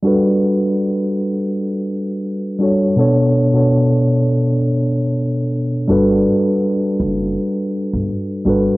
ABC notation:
X:1
M:4/4
L:1/16
Q:"Swing 16ths" 1/4=82
K:Glyd
V:1 name="Tine electric piano"
[G,DFAB]6 z8 [G,DFAc] z | [B,,B,DAc]2 z [B,,B,DAc]6 z6 z | [G,DFAB]6 z8 [G,DFAB] z |]
V:2 name="Upright bass" clef=bass
z16 | z16 | G,,,2 z4 F,,,2 z3 G,,, z2 G,,, z |]